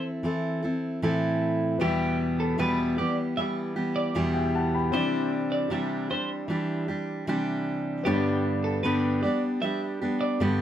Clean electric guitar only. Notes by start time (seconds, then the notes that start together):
1.81 G4
2.40 A4
2.60 B4
2.98 D5
3.37 E5
3.96 D5
4.94 C5
5.52 D5
5.71 E5
6.11 C5
8.05 G4
8.64 A4
8.83 B4
9.23 D5
9.62 E5
10.21 D5